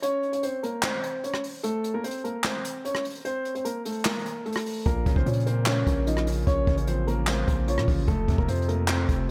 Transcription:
0.02 C#4 C#5, closed hi-hat
0.23 closed hi-hat
0.33 C#4 C#5, closed hi-hat
0.43 C4 C5, closed hi-hat
0.63 A#3 A#4, closed hi-hat
0.83 C4 C5, snare, clap
1.04 closed hi-hat
1.24 C#4 C#5, closed hi-hat
1.34 cross-stick
1.44 open hi-hat
1.63 A3 A4, closed hi-hat
1.84 closed hi-hat
1.94 A#3 A#4
2.04 C4 C5, closed hi-hat
2.11 closed hi-hat
2.18 closed hi-hat
2.24 A#3 A#4, closed hi-hat
2.44 C4 C5, snare, clap
2.65 closed hi-hat
2.85 C#4 C#5, closed hi-hat
2.95 cross-stick
3.05 closed hi-hat
3.10 closed hi-hat
3.15 closed hi-hat
3.20 closed hi-hat
3.25 C4 C5, closed hi-hat
3.45 closed hi-hat
3.55 C4 C5, closed hi-hat
3.65 A#3 A#4, closed hi-hat
3.85 A3 A4, closed hi-hat
3.92 closed hi-hat
3.99 closed hi-hat
4.05 A#3 A#4, snare, clap
4.12 closed hi-hat
4.19 closed hi-hat
4.26 closed hi-hat
4.46 A3 A4, closed hi-hat
4.53 cross-stick, closed hi-hat
4.59 closed hi-hat
4.66 open hi-hat
4.86 A#1 A#2 A#3 A#4, kick, closed hi-hat
5.06 A#1 C#3, kick, closed hi-hat
5.16 A#1 C4 C5, kick
5.26 A#2 F3 C#4 C#5, closed hi-hat
5.33 closed hi-hat
5.40 closed hi-hat
5.46 A#3 C4 C5, closed hi-hat
5.66 C#4 C#5, snare, clap
5.87 A#1 A#3, kick, closed hi-hat
6.07 F3 D#4 D#5, closed hi-hat
6.17 cross-stick
6.27 C#3, closed hi-hat
6.32 closed hi-hat
6.37 closed hi-hat
6.42 closed hi-hat
6.47 A#1 C#4 C#5, kick, closed hi-hat
6.67 A1 C#3, kick, closed hi-hat
6.77 C#4 C#5, closed hi-hat
6.87 F3 C4 C5, closed hi-hat
7.07 A#3 A#4, closed hi-hat
7.27 C4 F4 C5, snare, clap
7.48 A#1 A#3, kick, closed hi-hat
7.68 F3 C#4 C#5, closed hi-hat
7.78 A#2, cross-stick
7.88 A1 C#3, kick, open hi-hat
8.08 F1 F2 A3 A4, kick, closed hi-hat
8.28 F2 C3, kick, closed hi-hat
8.38 F1 A#3 A#4, kick
8.48 F2 F3 C4 C5, closed hi-hat
8.55 closed hi-hat
8.62 closed hi-hat
8.68 A3 A#3 A#4, closed hi-hat
8.88 C4 C5, snare, clap
9.09 F1 A3, kick, closed hi-hat

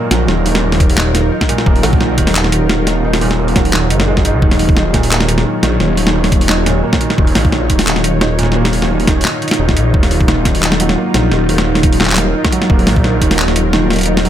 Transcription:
Already playing: A#2 D#3 F#3 A#3 D#4 F4 A#4
0.11 A#1 F#3, snare, closed hi-hat
0.28 D#1 D#3, snare
0.45 D#3, open hi-hat
0.55 snare
0.63 D#3
0.72 snare, open hi-hat
0.80 D#3, kick, closed hi-hat
0.90 open hi-hat
0.97 D#3, clap, snare
1.15 D#3, snare, closed hi-hat
1.32 D#4
1.41 kick, snare
1.49 A#2, closed hi-hat
1.58 snare
1.66 D#1 A#3, kick
1.76 open hi-hat
1.83 A#1 F#3, snare, open hi-hat
1.93 kick
2.01 D#3, snare
2.18 D#1 D#3, kick, closed hi-hat
2.27 snare, open hi-hat
2.35 D#3, clap
2.44 snare
2.52 D#3, closed hi-hat
2.69 D#3, snare
2.87 D#3, snare, closed hi-hat
3.04 D#4
3.14 snare, open hi-hat
3.21 A#2, open hi-hat
3.31 snare
3.39 A#3
3.48 open hi-hat
3.56 F#3, kick, snare, closed hi-hat
3.65 open hi-hat
3.73 D#3, clap, snare
3.90 F#1 D#4, closed hi-hat
4.00 snare
4.08 G#3
4.17 kick, snare
4.25 F#1 D#4, closed hi-hat
4.34 C#2
4.42 D#1 D#3 C#5, kick
4.51 snare, open hi-hat
4.59 D#3, open hi-hat
4.69 kick
4.77 D#4, snare
4.94 A#2, kick, snare, closed hi-hat
5.03 open hi-hat
5.11 A#3, clap
5.21 snare
5.28 D#3, closed hi-hat
5.38 snare
5.46 D#3
5.63 A#1 D#3, snare, closed hi-hat
5.80 D#1 D#3, snare
5.97 D#3, open hi-hat
6.07 snare
6.15 D#3
6.24 snare, open hi-hat
6.32 D#3, kick, closed hi-hat
6.41 open hi-hat
6.49 D#4, clap, snare
6.66 A#2, snare, closed hi-hat
6.83 A#3
6.93 kick, snare
7.01 D#3, closed hi-hat
7.10 snare
7.18 D#1 D#3, kick
7.27 open hi-hat
7.35 A#1 D#3, snare, open hi-hat
7.45 kick
7.52 D#3, snare
7.70 D#1 D#3, kick, closed hi-hat
7.79 snare, open hi-hat
7.87 D#3, clap
7.96 snare
8.04 D#3, closed hi-hat
8.21 D#4, snare
8.39 A#2, snare, closed hi-hat
8.43 snare
8.52 snare
8.56 A#3
8.65 snare, open hi-hat
8.73 D#3, open hi-hat
8.82 snare
8.90 D#3
9.00 open hi-hat
9.07 D#3, kick, snare, closed hi-hat
9.21 clap, snare, open hi-hat
9.25 D#3
9.42 D#3, closed hi-hat
9.48 snare, closed hi-hat
9.53 closed hi-hat
9.59 D#1 D#4
9.69 kick, snare
9.76 A#1 D#3, closed hi-hat
9.94 D#1 D#3 A#4, kick
10.03 snare, open hi-hat
10.11 D#3, open hi-hat
10.21 kick
10.28 D#3, snare
10.45 D#3, kick, snare, closed hi-hat
10.55 open hi-hat
10.63 D#4, clap
10.72 snare
10.80 F#3, closed hi-hat
10.89 snare
10.97 A#3
11.14 A#1 D#3, snare, closed hi-hat
11.32 D#1 D#3, snare
11.49 D#3, open hi-hat
11.58 snare
11.66 D#3
11.75 snare, open hi-hat
11.83 D#3, kick, closed hi-hat
11.93 open hi-hat
12.01 D#3, clap, snare
12.04 clap
12.06 clap
12.10 clap
12.12 clap
12.15 D#3, clap, snare, closed hi-hat
12.35 D#4
12.45 kick, snare
12.52 F#3, closed hi-hat
12.62 snare
12.70 D#1 A#3, kick
12.79 open hi-hat
12.87 A#1 D#3, snare, open hi-hat
12.96 kick
13.04 D#3, snare
13.21 D#1 D#3, kick, closed hi-hat
13.31 snare, open hi-hat
13.39 D#3, clap
13.48 snare
13.56 D#3, closed hi-hat
13.73 D#3, snare
13.90 D#3, snare, closed hi-hat
13.93 closed hi-hat
13.96 closed hi-hat
13.99 closed hi-hat
14.01 closed hi-hat
14.03 closed hi-hat
14.06 D#4, closed hi-hat
14.17 snare, open hi-hat
14.25 F#3, open hi-hat

